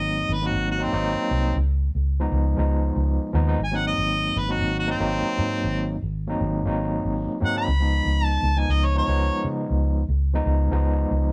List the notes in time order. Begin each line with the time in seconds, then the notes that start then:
Already playing: G#1 F#3 A#3 C4 D#4 D#5
0.29 G#1 B4
0.41 F#3 A#3 C4 D#4
0.47 F#4
0.54 G#1
0.71 F#4
0.78 F#3 A#3 C4 D#4
0.83 C4
0.92 G#1 F#3 A#3 C4 D#4
1.31 C2
1.56 C#2
1.95 C#2
2.20 F3 G#3 B3 D#4
2.32 C#2
2.57 C#2 F3 G#3 B3 D#4
2.96 C#2
3.33 D#2 F3 G#3 B3 D#4
3.46 F3 G#3 B3 D#4
3.59 G#1
3.64 G#5
3.71 F#3 A#3 C4 D#4
3.77 F#5
3.87 D#5
3.98 G#1
4.36 G#1 B4
4.49 F#3 A#3 C4 D#4 F#4
4.61 G#1
4.79 F#4
4.86 F#3 A#3 C4 D#4
4.91 C4
4.99 G#1 F#3 A#3 C4 D#4
5.38 G#2
5.64 G#1
6.02 G#1
6.27 F#3 A#3 C4 D#4
6.41 G#1
6.65 G#1 F#3 A#3 C4 D#4
7.05 G#1
7.40 G#2 F#3 A#3 C4 D#4
7.45 F#5
7.54 F#3 A#3 C4 D#4 B5
7.68 C#2
7.80 F3 G#3 B3 D#4
8.06 C#2
8.25 A5
8.43 C#2
8.56 F3 G#3 B3 D#4 G#5
8.69 C#2 D#5
8.86 C#5
8.94 F3 G#3 B3 D#4 C#5
9.07 C#2 F3 G#3 B3 D#4
9.44 C#3
9.70 C#2
10.09 C#2
10.34 F3 G#3 B3 D#4
10.46 C#2
10.71 C#2 F3 G#3 B3 D#4
11.11 C#2